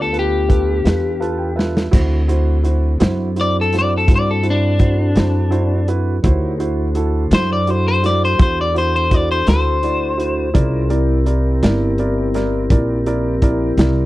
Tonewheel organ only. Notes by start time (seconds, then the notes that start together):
Already playing: B3 D4 F4 G4
1.92 C4 D4 F#4 A4
6.23 D#4 G4 A#4 C#5
6.57 D4 F#4 A4 C5
10.54 C#4 F4 G#4 A#4
10.90 C4 E4 G4 A#4